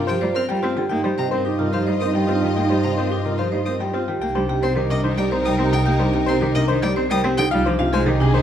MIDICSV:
0, 0, Header, 1, 8, 480
1, 0, Start_track
1, 0, Tempo, 550459
1, 796, Time_signature, 3, 2, 24, 8
1, 7343, End_track
2, 0, Start_track
2, 0, Title_t, "Violin"
2, 0, Program_c, 0, 40
2, 74, Note_on_c, 0, 79, 83
2, 164, Note_off_c, 0, 79, 0
2, 311, Note_on_c, 0, 89, 78
2, 403, Note_off_c, 0, 89, 0
2, 1030, Note_on_c, 0, 82, 72
2, 1122, Note_off_c, 0, 82, 0
2, 1508, Note_on_c, 0, 77, 73
2, 1601, Note_off_c, 0, 77, 0
2, 1750, Note_on_c, 0, 87, 65
2, 1842, Note_off_c, 0, 87, 0
2, 2469, Note_on_c, 0, 82, 65
2, 2561, Note_off_c, 0, 82, 0
2, 2947, Note_on_c, 0, 77, 64
2, 3040, Note_off_c, 0, 77, 0
2, 3189, Note_on_c, 0, 87, 62
2, 3281, Note_off_c, 0, 87, 0
2, 4037, Note_on_c, 0, 84, 76
2, 4126, Note_off_c, 0, 84, 0
2, 4277, Note_on_c, 0, 75, 94
2, 4367, Note_off_c, 0, 75, 0
2, 4516, Note_on_c, 0, 79, 81
2, 4606, Note_off_c, 0, 79, 0
2, 4752, Note_on_c, 0, 87, 76
2, 4844, Note_off_c, 0, 87, 0
2, 4996, Note_on_c, 0, 79, 97
2, 5086, Note_off_c, 0, 79, 0
2, 5479, Note_on_c, 0, 84, 79
2, 5568, Note_off_c, 0, 84, 0
2, 5713, Note_on_c, 0, 75, 106
2, 5804, Note_off_c, 0, 75, 0
2, 5952, Note_on_c, 0, 79, 90
2, 6043, Note_off_c, 0, 79, 0
2, 6198, Note_on_c, 0, 87, 93
2, 6287, Note_off_c, 0, 87, 0
2, 6432, Note_on_c, 0, 79, 114
2, 6524, Note_off_c, 0, 79, 0
2, 6915, Note_on_c, 0, 80, 84
2, 7005, Note_off_c, 0, 80, 0
2, 7343, End_track
3, 0, Start_track
3, 0, Title_t, "Grand piano"
3, 0, Program_c, 1, 0
3, 0, Note_on_c, 1, 70, 83
3, 61, Note_on_c, 1, 72, 93
3, 106, Note_off_c, 1, 70, 0
3, 187, Note_on_c, 1, 74, 82
3, 227, Note_off_c, 1, 72, 0
3, 304, Note_on_c, 1, 72, 74
3, 349, Note_off_c, 1, 74, 0
3, 425, Note_on_c, 1, 79, 96
3, 468, Note_off_c, 1, 72, 0
3, 548, Note_on_c, 1, 72, 77
3, 588, Note_off_c, 1, 79, 0
3, 668, Note_on_c, 1, 79, 75
3, 709, Note_off_c, 1, 72, 0
3, 766, Note_off_c, 1, 79, 0
3, 779, Note_on_c, 1, 79, 92
3, 905, Note_on_c, 1, 72, 75
3, 946, Note_off_c, 1, 79, 0
3, 1030, Note_on_c, 1, 79, 78
3, 1068, Note_off_c, 1, 72, 0
3, 1143, Note_on_c, 1, 72, 89
3, 1190, Note_off_c, 1, 79, 0
3, 1271, Note_on_c, 1, 67, 76
3, 1307, Note_off_c, 1, 72, 0
3, 1394, Note_on_c, 1, 70, 73
3, 1430, Note_off_c, 1, 67, 0
3, 1514, Note_on_c, 1, 72, 84
3, 1551, Note_off_c, 1, 70, 0
3, 1638, Note_on_c, 1, 75, 75
3, 1671, Note_off_c, 1, 72, 0
3, 1757, Note_on_c, 1, 72, 64
3, 1793, Note_off_c, 1, 75, 0
3, 1874, Note_on_c, 1, 79, 84
3, 1912, Note_off_c, 1, 72, 0
3, 1996, Note_on_c, 1, 72, 68
3, 2031, Note_off_c, 1, 79, 0
3, 2118, Note_on_c, 1, 79, 70
3, 2152, Note_off_c, 1, 72, 0
3, 2224, Note_off_c, 1, 79, 0
3, 2237, Note_on_c, 1, 79, 84
3, 2354, Note_on_c, 1, 72, 67
3, 2392, Note_off_c, 1, 79, 0
3, 2479, Note_on_c, 1, 79, 69
3, 2511, Note_off_c, 1, 72, 0
3, 2594, Note_on_c, 1, 72, 81
3, 2633, Note_off_c, 1, 79, 0
3, 2706, Note_on_c, 1, 67, 70
3, 2751, Note_off_c, 1, 72, 0
3, 2838, Note_on_c, 1, 70, 63
3, 2868, Note_off_c, 1, 67, 0
3, 2957, Note_on_c, 1, 72, 75
3, 2993, Note_off_c, 1, 70, 0
3, 3072, Note_on_c, 1, 75, 69
3, 3112, Note_off_c, 1, 72, 0
3, 3190, Note_on_c, 1, 72, 60
3, 3230, Note_off_c, 1, 75, 0
3, 3316, Note_on_c, 1, 79, 83
3, 3350, Note_off_c, 1, 72, 0
3, 3432, Note_on_c, 1, 72, 65
3, 3472, Note_off_c, 1, 79, 0
3, 3558, Note_on_c, 1, 79, 67
3, 3590, Note_off_c, 1, 72, 0
3, 3662, Note_off_c, 1, 79, 0
3, 3675, Note_on_c, 1, 79, 90
3, 3795, Note_on_c, 1, 72, 79
3, 3832, Note_off_c, 1, 79, 0
3, 3916, Note_on_c, 1, 79, 78
3, 3951, Note_off_c, 1, 72, 0
3, 4040, Note_on_c, 1, 72, 92
3, 4072, Note_off_c, 1, 79, 0
3, 4158, Note_on_c, 1, 67, 75
3, 4193, Note_off_c, 1, 72, 0
3, 4276, Note_on_c, 1, 70, 79
3, 4312, Note_off_c, 1, 67, 0
3, 4393, Note_on_c, 1, 72, 83
3, 4432, Note_off_c, 1, 70, 0
3, 4521, Note_on_c, 1, 74, 77
3, 4551, Note_off_c, 1, 72, 0
3, 4640, Note_on_c, 1, 72, 74
3, 4674, Note_off_c, 1, 74, 0
3, 4764, Note_on_c, 1, 79, 93
3, 4793, Note_off_c, 1, 72, 0
3, 4878, Note_on_c, 1, 72, 79
3, 4915, Note_off_c, 1, 79, 0
3, 4996, Note_on_c, 1, 79, 79
3, 5032, Note_off_c, 1, 72, 0
3, 5093, Note_off_c, 1, 79, 0
3, 5106, Note_on_c, 1, 79, 98
3, 5228, Note_on_c, 1, 72, 78
3, 5268, Note_off_c, 1, 79, 0
3, 5349, Note_on_c, 1, 79, 83
3, 5389, Note_off_c, 1, 72, 0
3, 5461, Note_on_c, 1, 72, 101
3, 5510, Note_off_c, 1, 79, 0
3, 5590, Note_on_c, 1, 67, 90
3, 5627, Note_off_c, 1, 72, 0
3, 5705, Note_on_c, 1, 70, 86
3, 5750, Note_off_c, 1, 67, 0
3, 5825, Note_on_c, 1, 72, 104
3, 5868, Note_off_c, 1, 70, 0
3, 5956, Note_on_c, 1, 74, 90
3, 5988, Note_off_c, 1, 72, 0
3, 6076, Note_on_c, 1, 72, 79
3, 6112, Note_off_c, 1, 74, 0
3, 6199, Note_on_c, 1, 79, 106
3, 6232, Note_off_c, 1, 72, 0
3, 6318, Note_on_c, 1, 72, 81
3, 6353, Note_off_c, 1, 79, 0
3, 6438, Note_on_c, 1, 79, 90
3, 6473, Note_off_c, 1, 72, 0
3, 6550, Note_on_c, 1, 77, 112
3, 6593, Note_off_c, 1, 79, 0
3, 6679, Note_on_c, 1, 72, 93
3, 6710, Note_off_c, 1, 77, 0
3, 6793, Note_on_c, 1, 77, 99
3, 6833, Note_off_c, 1, 72, 0
3, 6920, Note_on_c, 1, 72, 109
3, 6951, Note_off_c, 1, 77, 0
3, 7041, Note_on_c, 1, 67, 89
3, 7073, Note_off_c, 1, 72, 0
3, 7161, Note_on_c, 1, 68, 95
3, 7193, Note_off_c, 1, 67, 0
3, 7273, Note_on_c, 1, 72, 101
3, 7314, Note_off_c, 1, 68, 0
3, 7343, Note_off_c, 1, 72, 0
3, 7343, End_track
4, 0, Start_track
4, 0, Title_t, "Vibraphone"
4, 0, Program_c, 2, 11
4, 0, Note_on_c, 2, 65, 74
4, 67, Note_on_c, 2, 67, 82
4, 110, Note_off_c, 2, 65, 0
4, 184, Note_on_c, 2, 72, 101
4, 229, Note_off_c, 2, 67, 0
4, 304, Note_on_c, 2, 70, 79
4, 348, Note_off_c, 2, 72, 0
4, 426, Note_on_c, 2, 67, 83
4, 467, Note_off_c, 2, 70, 0
4, 547, Note_on_c, 2, 65, 92
4, 588, Note_off_c, 2, 67, 0
4, 670, Note_on_c, 2, 67, 82
4, 709, Note_off_c, 2, 65, 0
4, 790, Note_on_c, 2, 63, 84
4, 830, Note_off_c, 2, 67, 0
4, 908, Note_on_c, 2, 67, 87
4, 950, Note_off_c, 2, 63, 0
4, 1027, Note_on_c, 2, 72, 79
4, 1069, Note_off_c, 2, 67, 0
4, 1146, Note_on_c, 2, 70, 76
4, 1189, Note_off_c, 2, 72, 0
4, 1265, Note_on_c, 2, 63, 90
4, 1308, Note_off_c, 2, 70, 0
4, 1387, Note_on_c, 2, 65, 73
4, 1428, Note_off_c, 2, 63, 0
4, 1506, Note_on_c, 2, 67, 72
4, 1549, Note_off_c, 2, 65, 0
4, 1629, Note_on_c, 2, 72, 86
4, 1668, Note_off_c, 2, 67, 0
4, 1744, Note_on_c, 2, 70, 74
4, 1789, Note_off_c, 2, 72, 0
4, 1863, Note_on_c, 2, 67, 76
4, 1907, Note_off_c, 2, 70, 0
4, 1986, Note_on_c, 2, 65, 88
4, 2027, Note_off_c, 2, 67, 0
4, 2105, Note_on_c, 2, 67, 66
4, 2148, Note_off_c, 2, 65, 0
4, 2230, Note_on_c, 2, 63, 71
4, 2268, Note_off_c, 2, 67, 0
4, 2348, Note_on_c, 2, 67, 82
4, 2390, Note_off_c, 2, 63, 0
4, 2471, Note_on_c, 2, 72, 69
4, 2509, Note_off_c, 2, 67, 0
4, 2597, Note_on_c, 2, 70, 69
4, 2630, Note_off_c, 2, 72, 0
4, 2717, Note_on_c, 2, 63, 84
4, 2752, Note_off_c, 2, 70, 0
4, 2835, Note_on_c, 2, 65, 60
4, 2872, Note_off_c, 2, 63, 0
4, 2954, Note_on_c, 2, 67, 67
4, 2991, Note_off_c, 2, 65, 0
4, 3070, Note_on_c, 2, 72, 81
4, 3111, Note_off_c, 2, 67, 0
4, 3194, Note_on_c, 2, 70, 64
4, 3230, Note_off_c, 2, 72, 0
4, 3319, Note_on_c, 2, 67, 69
4, 3351, Note_off_c, 2, 70, 0
4, 3437, Note_on_c, 2, 65, 79
4, 3473, Note_off_c, 2, 67, 0
4, 3556, Note_on_c, 2, 67, 63
4, 3592, Note_off_c, 2, 65, 0
4, 3668, Note_off_c, 2, 67, 0
4, 3678, Note_on_c, 2, 67, 82
4, 3798, Note_on_c, 2, 62, 79
4, 3833, Note_off_c, 2, 67, 0
4, 3920, Note_on_c, 2, 67, 95
4, 3953, Note_off_c, 2, 62, 0
4, 4034, Note_on_c, 2, 72, 77
4, 4073, Note_off_c, 2, 67, 0
4, 4158, Note_on_c, 2, 70, 75
4, 4191, Note_off_c, 2, 72, 0
4, 4276, Note_on_c, 2, 62, 89
4, 4313, Note_off_c, 2, 70, 0
4, 4396, Note_on_c, 2, 63, 82
4, 4432, Note_off_c, 2, 62, 0
4, 4514, Note_on_c, 2, 67, 80
4, 4552, Note_off_c, 2, 63, 0
4, 4633, Note_on_c, 2, 72, 91
4, 4671, Note_off_c, 2, 67, 0
4, 4756, Note_on_c, 2, 70, 83
4, 4791, Note_off_c, 2, 72, 0
4, 4877, Note_on_c, 2, 67, 77
4, 4912, Note_off_c, 2, 70, 0
4, 4995, Note_on_c, 2, 63, 97
4, 5032, Note_off_c, 2, 67, 0
4, 5115, Note_on_c, 2, 67, 85
4, 5152, Note_off_c, 2, 63, 0
4, 5231, Note_on_c, 2, 62, 77
4, 5271, Note_off_c, 2, 67, 0
4, 5349, Note_on_c, 2, 67, 104
4, 5390, Note_off_c, 2, 62, 0
4, 5471, Note_on_c, 2, 72, 86
4, 5510, Note_off_c, 2, 67, 0
4, 5591, Note_on_c, 2, 70, 84
4, 5630, Note_off_c, 2, 72, 0
4, 5710, Note_on_c, 2, 62, 100
4, 5750, Note_off_c, 2, 70, 0
4, 5828, Note_on_c, 2, 63, 88
4, 5870, Note_off_c, 2, 62, 0
4, 5950, Note_on_c, 2, 67, 83
4, 5989, Note_off_c, 2, 63, 0
4, 6071, Note_on_c, 2, 72, 108
4, 6110, Note_off_c, 2, 67, 0
4, 6193, Note_on_c, 2, 70, 92
4, 6230, Note_off_c, 2, 72, 0
4, 6313, Note_on_c, 2, 67, 97
4, 6351, Note_off_c, 2, 70, 0
4, 6430, Note_on_c, 2, 63, 109
4, 6471, Note_off_c, 2, 67, 0
4, 6550, Note_on_c, 2, 65, 99
4, 6590, Note_off_c, 2, 63, 0
4, 6668, Note_on_c, 2, 62, 87
4, 6710, Note_off_c, 2, 65, 0
4, 6793, Note_on_c, 2, 65, 118
4, 6829, Note_off_c, 2, 62, 0
4, 6912, Note_on_c, 2, 68, 92
4, 6951, Note_off_c, 2, 65, 0
4, 7030, Note_on_c, 2, 67, 90
4, 7070, Note_off_c, 2, 68, 0
4, 7153, Note_on_c, 2, 62, 101
4, 7190, Note_off_c, 2, 67, 0
4, 7276, Note_on_c, 2, 63, 90
4, 7311, Note_off_c, 2, 62, 0
4, 7343, Note_off_c, 2, 63, 0
4, 7343, End_track
5, 0, Start_track
5, 0, Title_t, "String section"
5, 0, Program_c, 3, 48
5, 0, Note_on_c, 3, 65, 79
5, 0, Note_on_c, 3, 70, 84
5, 640, Note_off_c, 3, 70, 0
5, 641, Note_off_c, 3, 65, 0
5, 792, Note_on_c, 3, 75, 84
5, 793, Note_on_c, 3, 65, 78
5, 3519, Note_off_c, 3, 65, 0
5, 3519, Note_off_c, 3, 75, 0
5, 3678, Note_on_c, 3, 70, 80
5, 3681, Note_on_c, 3, 63, 84
5, 6402, Note_off_c, 3, 70, 0
5, 6403, Note_off_c, 3, 63, 0
5, 6556, Note_on_c, 3, 63, 95
5, 6556, Note_on_c, 3, 68, 94
5, 7343, Note_off_c, 3, 63, 0
5, 7343, Note_off_c, 3, 68, 0
5, 7343, End_track
6, 0, Start_track
6, 0, Title_t, "French horn"
6, 0, Program_c, 4, 60
6, 0, Note_on_c, 4, 65, 71
6, 97, Note_off_c, 4, 65, 0
6, 167, Note_on_c, 4, 65, 59
6, 345, Note_off_c, 4, 65, 0
6, 418, Note_on_c, 4, 65, 44
6, 596, Note_off_c, 4, 65, 0
6, 790, Note_on_c, 4, 63, 47
6, 967, Note_off_c, 4, 63, 0
6, 1040, Note_on_c, 4, 63, 57
6, 1218, Note_off_c, 4, 63, 0
6, 1292, Note_on_c, 4, 63, 68
6, 1470, Note_off_c, 4, 63, 0
6, 1534, Note_on_c, 4, 63, 79
6, 1715, Note_off_c, 4, 63, 0
6, 1789, Note_on_c, 4, 63, 77
6, 1968, Note_off_c, 4, 63, 0
6, 2033, Note_on_c, 4, 63, 81
6, 2215, Note_off_c, 4, 63, 0
6, 2290, Note_on_c, 4, 63, 75
6, 2470, Note_off_c, 4, 63, 0
6, 2544, Note_on_c, 4, 63, 72
6, 2722, Note_off_c, 4, 63, 0
6, 2801, Note_on_c, 4, 63, 57
6, 2977, Note_off_c, 4, 63, 0
6, 3060, Note_on_c, 4, 63, 47
6, 3234, Note_off_c, 4, 63, 0
6, 3300, Note_on_c, 4, 63, 37
6, 3478, Note_off_c, 4, 63, 0
6, 3670, Note_on_c, 4, 63, 75
6, 6398, Note_off_c, 4, 63, 0
6, 6555, Note_on_c, 4, 63, 87
6, 7343, Note_off_c, 4, 63, 0
6, 7343, End_track
7, 0, Start_track
7, 0, Title_t, "Cello"
7, 0, Program_c, 5, 42
7, 72, Note_on_c, 5, 53, 101
7, 163, Note_off_c, 5, 53, 0
7, 193, Note_on_c, 5, 55, 74
7, 284, Note_off_c, 5, 55, 0
7, 313, Note_on_c, 5, 60, 75
7, 404, Note_off_c, 5, 60, 0
7, 430, Note_on_c, 5, 55, 98
7, 522, Note_off_c, 5, 55, 0
7, 553, Note_on_c, 5, 60, 75
7, 644, Note_off_c, 5, 60, 0
7, 668, Note_on_c, 5, 50, 80
7, 761, Note_off_c, 5, 50, 0
7, 790, Note_on_c, 5, 58, 99
7, 882, Note_off_c, 5, 58, 0
7, 909, Note_on_c, 5, 55, 78
7, 1001, Note_off_c, 5, 55, 0
7, 1030, Note_on_c, 5, 48, 76
7, 1122, Note_off_c, 5, 48, 0
7, 1150, Note_on_c, 5, 60, 86
7, 1242, Note_off_c, 5, 60, 0
7, 1392, Note_on_c, 5, 48, 72
7, 1484, Note_off_c, 5, 48, 0
7, 1512, Note_on_c, 5, 53, 84
7, 1603, Note_off_c, 5, 53, 0
7, 1634, Note_on_c, 5, 55, 69
7, 1725, Note_off_c, 5, 55, 0
7, 1757, Note_on_c, 5, 60, 63
7, 1846, Note_off_c, 5, 60, 0
7, 1870, Note_on_c, 5, 55, 85
7, 1962, Note_off_c, 5, 55, 0
7, 1992, Note_on_c, 5, 60, 66
7, 2084, Note_off_c, 5, 60, 0
7, 2114, Note_on_c, 5, 51, 68
7, 2205, Note_off_c, 5, 51, 0
7, 2233, Note_on_c, 5, 58, 83
7, 2324, Note_off_c, 5, 58, 0
7, 2355, Note_on_c, 5, 55, 67
7, 2445, Note_off_c, 5, 55, 0
7, 2479, Note_on_c, 5, 48, 64
7, 2568, Note_off_c, 5, 48, 0
7, 2599, Note_on_c, 5, 60, 79
7, 2688, Note_off_c, 5, 60, 0
7, 2835, Note_on_c, 5, 48, 63
7, 2925, Note_off_c, 5, 48, 0
7, 2958, Note_on_c, 5, 53, 80
7, 3047, Note_off_c, 5, 53, 0
7, 3078, Note_on_c, 5, 55, 64
7, 3167, Note_off_c, 5, 55, 0
7, 3200, Note_on_c, 5, 60, 61
7, 3288, Note_off_c, 5, 60, 0
7, 3316, Note_on_c, 5, 55, 80
7, 3406, Note_off_c, 5, 55, 0
7, 3433, Note_on_c, 5, 60, 61
7, 3524, Note_off_c, 5, 60, 0
7, 3559, Note_on_c, 5, 51, 65
7, 3647, Note_off_c, 5, 51, 0
7, 3672, Note_on_c, 5, 58, 93
7, 3763, Note_off_c, 5, 58, 0
7, 3794, Note_on_c, 5, 55, 82
7, 3884, Note_off_c, 5, 55, 0
7, 3908, Note_on_c, 5, 48, 78
7, 4001, Note_off_c, 5, 48, 0
7, 4028, Note_on_c, 5, 60, 95
7, 4121, Note_off_c, 5, 60, 0
7, 4143, Note_on_c, 5, 51, 83
7, 4238, Note_off_c, 5, 51, 0
7, 4271, Note_on_c, 5, 48, 70
7, 4363, Note_off_c, 5, 48, 0
7, 4390, Note_on_c, 5, 51, 88
7, 4482, Note_off_c, 5, 51, 0
7, 4508, Note_on_c, 5, 55, 71
7, 4601, Note_off_c, 5, 55, 0
7, 4633, Note_on_c, 5, 60, 70
7, 4724, Note_off_c, 5, 60, 0
7, 4754, Note_on_c, 5, 55, 97
7, 4845, Note_off_c, 5, 55, 0
7, 4868, Note_on_c, 5, 60, 75
7, 4961, Note_off_c, 5, 60, 0
7, 4992, Note_on_c, 5, 50, 75
7, 5083, Note_off_c, 5, 50, 0
7, 5106, Note_on_c, 5, 58, 96
7, 5199, Note_off_c, 5, 58, 0
7, 5224, Note_on_c, 5, 55, 81
7, 5318, Note_off_c, 5, 55, 0
7, 5350, Note_on_c, 5, 48, 80
7, 5442, Note_off_c, 5, 48, 0
7, 5473, Note_on_c, 5, 60, 99
7, 5564, Note_off_c, 5, 60, 0
7, 5593, Note_on_c, 5, 51, 87
7, 5684, Note_off_c, 5, 51, 0
7, 5711, Note_on_c, 5, 48, 77
7, 5803, Note_off_c, 5, 48, 0
7, 5836, Note_on_c, 5, 51, 105
7, 5926, Note_off_c, 5, 51, 0
7, 5953, Note_on_c, 5, 55, 82
7, 6044, Note_off_c, 5, 55, 0
7, 6077, Note_on_c, 5, 60, 79
7, 6166, Note_off_c, 5, 60, 0
7, 6189, Note_on_c, 5, 55, 115
7, 6281, Note_off_c, 5, 55, 0
7, 6314, Note_on_c, 5, 60, 85
7, 6405, Note_off_c, 5, 60, 0
7, 6434, Note_on_c, 5, 50, 91
7, 6525, Note_off_c, 5, 50, 0
7, 6563, Note_on_c, 5, 55, 113
7, 6650, Note_off_c, 5, 55, 0
7, 6683, Note_on_c, 5, 53, 94
7, 6770, Note_off_c, 5, 53, 0
7, 6795, Note_on_c, 5, 48, 93
7, 6885, Note_off_c, 5, 48, 0
7, 6910, Note_on_c, 5, 56, 114
7, 7002, Note_off_c, 5, 56, 0
7, 7029, Note_on_c, 5, 51, 93
7, 7122, Note_off_c, 5, 51, 0
7, 7157, Note_on_c, 5, 48, 83
7, 7247, Note_off_c, 5, 48, 0
7, 7266, Note_on_c, 5, 51, 104
7, 7343, Note_off_c, 5, 51, 0
7, 7343, End_track
8, 0, Start_track
8, 0, Title_t, "Double bass section"
8, 0, Program_c, 6, 48
8, 0, Note_on_c, 6, 43, 82
8, 667, Note_off_c, 6, 43, 0
8, 791, Note_on_c, 6, 43, 80
8, 3543, Note_off_c, 6, 43, 0
8, 3675, Note_on_c, 6, 36, 83
8, 6424, Note_off_c, 6, 36, 0
8, 6559, Note_on_c, 6, 36, 93
8, 7343, Note_off_c, 6, 36, 0
8, 7343, End_track
0, 0, End_of_file